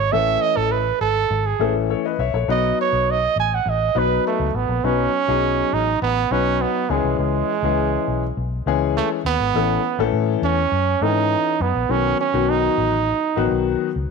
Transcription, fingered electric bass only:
0.13 0.35 A1 loud
0.57 0.90 A1 medium
1.01 1.23 G#1 medium
1.30 1.53 G#1 loud
1.59 1.93 A1 loud
2.19 2.30 B1 medium
2.34 2.45 A#1 loud
2.48 2.71 B1 loud
2.93 3.26 B1 medium
3.36 3.59 A1 medium
3.66 3.88 A1 loud
3.95 4.18 B1 medium
4.39 4.51 C#2 medium
4.54 4.65 A1 medium
4.69 4.80 A#1 loud
4.84 5.06 B1 loud
5.28 5.61 B1 medium
5.73 5.95 A1 medium
6.02 6.24 A1 medium
6.31 6.64 B1 medium
6.89 7.01 C#2 medium
7.04 7.15 C2 medium
7.19 7.41 C#2 loud
7.62 7.96 C#2 medium
8.08 8.30 B1 medium
8.37 8.59 B1 medium
8.66 8.99 C#2 medium
9.25 9.36 D#2 medium
9.40 9.51 G#1 medium
9.54 9.77 A1 loud
9.99 10.10 A1 medium
10.13 10.35 A2 medium
10.42 10.65 E2 medium
10.72 10.94 F#2 medium
11.01 11.35 G#2 medium
11.60 11.71 F#2 medium
11.75 11.86 A#1 medium
11.89 12.12 B1 loud
12.34 12.67 B1 medium
12.78 13.11 A1 medium
13.37 13.48 A1 medium
13.51 13.74 B1 medium
13.96 14.07 C#2 medium

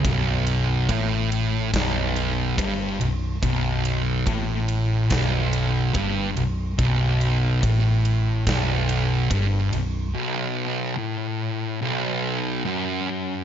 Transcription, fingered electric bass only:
0.05 0.85 B0 loud
0.90 1.70 A1 loud
1.74 2.54 B0 medium
2.59 2.98 G1 medium
3.01 3.40 B0 medium
3.43 4.23 B0 medium
4.27 5.07 A1 loud
5.11 5.91 B0 medium
5.95 6.34 G1 medium
6.38 6.77 B0 medium
6.79 7.59 B0 loud
7.63 8.43 A1 medium
8.47 9.27 B0 loud
9.31 9.70 G1 medium
9.73 10.12 B0 medium

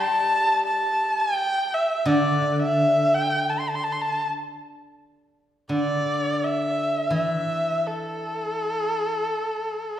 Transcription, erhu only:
0.00 0.66 A5 loud
0.66 1.21 A5 loud
1.19 1.75 G5 loud
1.74 2.09 E5 medium
2.08 2.61 D5 medium
2.62 3.16 E5 loud
3.14 3.51 G5 loud
3.50 3.61 A5 medium
3.60 3.70 C6 medium
3.69 3.77 A5 medium
3.75 3.86 C6 medium
3.84 3.94 A5 medium
3.92 4.03 C6 medium
4.01 4.25 A5 medium
5.72 6.45 D5 medium
6.44 7.15 E5 medium
7.16 7.88 E5 medium
7.86 9.99 A4 medium

